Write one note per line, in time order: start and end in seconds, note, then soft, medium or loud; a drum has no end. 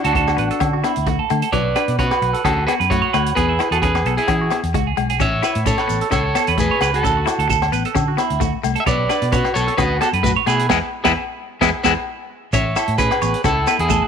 0.04 0.35 D2 medium
0.04 0.93 D4 medium
0.04 0.92 F#4 medium
0.04 0.15 A4 medium
0.04 closed hi-hat soft
0.13 0.30 D4 medium
0.13 0.38 A4 medium
0.13 kick medium
0.13 closed hi-hat soft
0.28 cross-stick medium
0.28 low agogo medium
0.37 0.49 A1 medium
0.37 0.54 B3 medium
0.37 0.50 B4 medium
0.37 closed hi-hat soft
0.50 0.73 A4 medium
0.50 closed hi-hat soft
0.60 0.82 D3 medium
0.60 0.77 C#4 medium
0.60 kick medium
0.60 cross-stick medium
0.60 closed hi-hat soft
0.60 low agogo medium
0.73 0.84 F#4 medium
0.84 1.00 B3 medium
0.84 1.06 E4 medium
0.84 cross-stick medium
0.84 closed hi-hat soft
0.84 low agogo medium
0.96 1.18 D2 medium
0.96 closed hi-hat soft
1.06 1.24 A3 medium
1.06 1.19 F#4 medium
1.06 kick medium
1.06 closed hi-hat soft
1.19 1.41 A4 medium
1.30 1.42 D3 medium
1.30 1.47 A3 medium
1.30 closed hi-hat soft
1.30 low agogo medium
1.42 1.52 A4 medium
1.42 closed hi-hat soft
1.52 1.74 B1 medium
1.52 1.70 F#3 medium
1.52 1.96 B4 medium
1.52 1.75 C#5 medium
1.52 1.99 D5 medium
1.52 kick medium
1.52 closed hi-hat soft
1.76 1.92 D4 medium
1.76 1.98 B4 medium
1.76 cross-stick medium
1.76 closed hi-hat soft
1.76 low agogo medium
1.88 2.09 B2 medium
1.88 closed hi-hat medium
1.99 2.15 C#4 medium
1.99 2.42 F#4 medium
1.99 2.42 B4 medium
1.99 2.11 C#5 medium
1.99 kick medium
1.99 closed hi-hat soft
2.11 2.33 B4 medium
2.11 cross-stick medium
2.11 low agogo medium
2.22 2.33 B1 medium
2.22 muted clean electric guitar stroke medium
2.22 closed hi-hat soft
2.33 2.44 A4 medium
2.33 closed hi-hat soft
2.44 2.66 D2 medium
2.44 2.62 C#4 medium
2.44 2.67 F#4 medium
2.44 2.66 G#4 medium
2.44 2.66 A4 medium
2.44 kick medium
2.44 cross-stick medium
2.44 closed hi-hat soft
2.44 low agogo medium
2.67 2.85 B3 medium
2.67 2.79 F#4 medium
2.67 2.74 G#4 medium
2.67 2.73 B4 medium
2.67 cross-stick medium
2.67 closed hi-hat soft
2.67 low agogo medium
2.80 3.01 F#2 medium
2.80 3.01 B4 medium
2.80 closed hi-hat medium
2.90 3.07 A3 medium
2.90 3.33 F#4 medium
2.90 3.33 C#5 medium
2.90 kick medium
2.90 closed hi-hat soft
3.02 3.13 C#5 medium
3.13 3.35 D2 medium
3.13 3.30 A3 medium
3.13 3.35 B4 medium
3.13 cross-stick medium
3.13 closed hi-hat soft
3.13 low agogo medium
3.26 closed hi-hat medium
3.35 3.57 E2 medium
3.35 3.53 B3 medium
3.35 3.69 G#4 medium
3.35 3.48 G#4 medium
3.35 3.69 B4 medium
3.35 kick medium
3.35 closed hi-hat soft
3.49 3.71 E4 medium
3.59 3.76 E4 medium
3.59 cross-stick medium
3.59 closed hi-hat soft
3.59 low agogo medium
3.71 4.02 E2 medium
3.71 3.82 F#4 medium
3.71 3.82 G#4 medium
3.71 3.81 A4 medium
3.71 closed hi-hat medium
3.82 3.99 C#4 medium
3.82 4.15 G#4 medium
3.82 4.05 G#4 medium
3.82 4.15 B4 medium
3.82 kick medium
3.82 closed hi-hat soft
3.95 cross-stick medium
3.95 low agogo medium
4.05 4.16 B1 medium
4.05 4.22 B3 medium
4.05 4.18 A4 medium
4.05 closed hi-hat soft
4.17 4.60 E4 medium
4.17 4.60 G#4 medium
4.17 4.40 G#4 medium
4.17 closed hi-hat soft
4.28 4.49 E3 medium
4.28 4.45 C#4 medium
4.28 kick medium
4.28 cross-stick medium
4.28 closed hi-hat soft
4.28 low agogo medium
4.41 4.51 F#4 medium
4.50 4.68 B3 medium
4.50 muted clean electric guitar stroke medium
4.50 cross-stick medium
4.50 closed hi-hat soft
4.50 low agogo medium
4.63 4.73 E2 medium
4.63 closed hi-hat soft
4.74 4.95 C#2 medium
4.74 4.91 G#3 medium
4.74 4.86 F#4 medium
4.74 kick medium
4.74 closed hi-hat medium
4.87 5.09 G#4 medium
4.97 5.18 B1 medium
4.97 5.13 G#3 medium
4.97 closed hi-hat soft
4.97 low agogo medium
5.09 5.20 G#4 medium
5.09 closed hi-hat soft
5.20 5.41 A1 medium
5.20 5.36 C#4 medium
5.20 5.42 C#5 medium
5.20 5.64 C#5 medium
5.20 5.68 E5 medium
5.20 kick medium
5.20 closed hi-hat soft
5.20 shekere medium
5.42 5.59 E4 medium
5.42 5.66 B4 medium
5.42 cross-stick medium
5.42 closed hi-hat soft
5.42 low agogo medium
5.42 shekere medium
5.55 5.76 A2 medium
5.55 closed hi-hat soft
5.66 5.82 C#4 medium
5.66 6.09 A4 medium
5.66 5.78 C#5 medium
5.66 6.09 C#5 medium
5.66 kick medium
5.66 closed hi-hat soft
5.66 shekere medium
5.78 6.00 B4 medium
5.78 cross-stick medium
5.78 low agogo medium
5.88 6.00 A1 medium
5.88 6.04 B3 medium
5.88 closed hi-hat soft
5.88 shekere medium
6.01 6.12 A4 medium
6.01 closed hi-hat soft
6.11 6.32 C#2 medium
6.11 6.28 C#4 medium
6.11 6.54 A4 medium
6.11 6.34 A4 medium
6.11 6.60 C#5 medium
6.11 kick medium
6.11 cross-stick medium
6.11 closed hi-hat soft
6.11 low agogo medium
6.11 shekere medium
6.35 6.51 B3 medium
6.35 6.47 A4 medium
6.35 cross-stick medium
6.35 closed hi-hat soft
6.35 low agogo medium
6.35 shekere medium
6.47 6.68 E2 medium
6.47 6.69 B4 medium
6.47 closed hi-hat soft
6.58 6.74 A3 medium
6.58 6.91 G#4 medium
6.58 6.92 B4 medium
6.58 kick medium
6.58 closed hi-hat soft
6.58 shekere medium
6.71 6.81 C#5 medium
6.80 7.01 C#2 medium
6.80 7.03 B4 medium
6.80 cross-stick medium
6.80 closed hi-hat soft
6.80 low agogo medium
6.80 shekere medium
6.94 7.58 F#4 medium
6.94 7.59 A4 medium
6.94 closed hi-hat soft
7.03 7.24 D2 medium
7.03 7.20 C#4 medium
7.03 7.16 A4 medium
7.03 kick medium
7.03 closed hi-hat soft
7.03 shekere medium
7.17 7.38 F#4 medium
7.26 7.42 E4 medium
7.26 cross-stick medium
7.26 closed hi-hat soft
7.26 low agogo medium
7.26 shekere medium
7.38 7.69 D2 medium
7.38 7.49 A4 medium
7.38 closed hi-hat medium
7.48 7.72 A4 medium
7.48 muted clean electric guitar stroke medium
7.48 kick medium
7.48 closed hi-hat medium
7.48 shekere medium
7.62 cross-stick medium
7.62 low agogo medium
7.72 7.83 A1 medium
7.72 7.89 B3 medium
7.72 7.84 B4 medium
7.72 closed hi-hat soft
7.72 shekere medium
7.85 8.07 A4 medium
7.85 closed hi-hat soft
7.95 8.16 D3 medium
7.95 8.11 C#4 medium
7.95 kick medium
7.95 cross-stick medium
7.95 closed hi-hat soft
7.95 low agogo medium
7.95 shekere medium
8.08 8.18 F#4 medium
8.17 8.34 B3 medium
8.17 8.40 E4 medium
8.17 cross-stick medium
8.17 closed hi-hat soft
8.17 low agogo medium
8.17 shekere medium
8.30 8.51 D2 medium
8.30 closed hi-hat soft
8.40 8.57 A3 medium
8.40 8.53 F#4 medium
8.40 kick medium
8.40 closed hi-hat soft
8.40 shekere medium
8.63 8.75 C2 medium
8.63 8.80 A3 medium
8.63 closed hi-hat soft
8.63 low agogo medium
8.63 shekere medium
8.76 8.86 A4 medium
8.76 closed hi-hat soft
8.80 8.87 E5 medium
8.86 9.08 B1 medium
8.86 9.03 B3 medium
8.86 9.30 B4 medium
8.86 9.09 C#5 medium
8.86 9.34 D5 medium
8.86 kick medium
8.86 closed hi-hat soft
8.86 shekere medium
9.09 9.26 D4 medium
9.09 9.32 B4 medium
9.09 cross-stick medium
9.09 closed hi-hat soft
9.09 low agogo medium
9.09 shekere medium
9.22 9.43 B2 medium
9.22 closed hi-hat soft
9.32 9.49 C#4 medium
9.32 9.55 F#4 medium
9.32 9.55 B4 medium
9.32 9.44 C#5 medium
9.32 kick medium
9.32 closed hi-hat soft
9.32 shekere medium
9.45 cross-stick medium
9.45 low agogo medium
9.54 9.67 B1 medium
9.54 9.72 B3 medium
9.54 9.77 A4 medium
9.54 9.79 C#5 medium
9.54 closed hi-hat soft
9.54 shekere medium
9.68 9.78 A4 medium
9.68 closed hi-hat soft
9.77 9.99 D2 medium
9.77 9.94 C#4 medium
9.77 10.00 F#4 medium
9.77 10.00 G#4 medium
9.77 9.99 B4 loud
9.77 kick medium
9.77 cross-stick medium
9.77 closed hi-hat soft
9.77 low agogo medium
9.77 shekere medium
10.01 10.17 B3 medium
10.01 10.09 F#4 medium
10.01 10.07 A4 medium
10.01 10.13 A4 medium
10.01 cross-stick medium
10.01 closed hi-hat soft
10.01 low agogo medium
10.01 shekere medium
10.13 10.34 F#2 medium
10.13 10.36 B4 medium
10.13 closed hi-hat soft
10.23 10.40 A3 medium
10.23 10.32 F#4 medium
10.23 10.30 B4 loud
10.23 kick medium
10.23 closed hi-hat soft
10.23 shekere medium
10.36 10.47 C#5 medium
10.46 10.68 B2 medium
10.46 10.63 A3 medium
10.46 10.69 E4 medium
10.46 10.68 G#4 medium
10.46 10.69 B4 medium
10.46 cross-stick medium
10.46 closed hi-hat soft
10.46 low agogo medium
10.46 shekere medium
10.59 closed hi-hat medium
10.69 10.79 E2 medium
10.69 10.78 G#3 medium
10.69 10.78 B3 medium
10.69 10.78 E4 medium
10.69 10.77 G#4 medium
10.69 10.78 G#4 medium
10.69 10.78 B4 medium
10.69 kick medium
10.69 snare medium
10.69 low agogo medium
10.69 shekere medium
11.04 11.13 E2 medium
11.04 11.12 G#3 medium
11.04 11.12 B3 medium
11.04 11.11 E4 medium
11.04 11.12 E4 loud
11.04 11.12 E4 medium
11.04 11.11 G#4 medium
11.04 11.12 G#4 medium
11.04 11.12 B4 loud
11.04 11.12 B4 medium
11.04 kick medium
11.04 snare medium
11.04 low agogo loud
11.04 shekere medium
11.61 11.71 E2 medium
11.61 11.69 G#3 medium
11.61 11.69 B3 medium
11.61 11.69 E4 medium
11.61 11.70 E4 medium
11.61 11.69 G#4 medium
11.61 11.70 G#4 medium
11.61 11.69 B4 loud
11.61 11.70 B4 medium
11.61 kick medium
11.61 snare medium
11.61 low agogo medium
11.61 shekere medium
11.83 11.93 E2 medium
11.83 11.93 G#3 medium
11.83 11.93 B3 medium
11.83 11.92 E4 medium
11.83 11.93 E4 medium
11.83 11.92 G#4 medium
11.83 11.93 G#4 medium
11.83 11.92 B4 medium
11.83 11.93 B4 medium
11.83 kick medium
11.83 snare medium
11.83 low agogo medium
11.83 shekere medium
12.53 12.74 A1 medium
12.53 12.70 C#4 medium
12.53 12.96 C#5 medium
12.53 12.75 C#5 medium
12.53 12.98 E5 medium
12.53 kick medium
12.53 closed hi-hat soft
12.53 shekere medium
12.76 12.93 E4 medium
12.76 12.98 A4 medium
12.76 cross-stick medium
12.76 closed hi-hat soft
12.76 low agogo medium
12.76 shekere medium
12.87 13.09 A2 medium
12.87 closed hi-hat soft
12.98 13.15 C#4 medium
12.98 13.41 G#4 medium
12.98 13.41 B4 medium
12.98 13.21 B4 medium
12.98 kick medium
12.98 closed hi-hat soft
12.98 shekere medium
13.11 cross-stick medium
13.11 low agogo medium
13.21 13.33 A1 medium
13.21 13.38 B3 medium
13.21 13.43 C#5 medium
13.21 closed hi-hat soft
13.21 shekere medium
13.34 closed hi-hat medium
13.44 13.65 C#2 medium
13.44 13.60 C#4 medium
13.44 13.77 E4 medium
13.44 13.67 A4 medium
13.44 13.80 A4 medium
13.44 kick medium
13.44 cross-stick medium
13.44 closed hi-hat soft
13.44 low agogo medium
13.44 shekere medium
13.67 13.83 B3 medium
13.67 13.89 B4 medium
13.67 cross-stick medium
13.67 closed hi-hat soft
13.67 low agogo medium
13.67 shekere medium
13.79 14.00 E2 medium
13.79 14.08 E4 medium
13.79 14.08 G#4 medium
13.79 closed hi-hat soft
13.89 14.06 A3 medium
13.89 14.02 A4 medium
13.89 kick medium
13.89 closed hi-hat medium
13.89 shekere medium
14.02 14.08 F#4 medium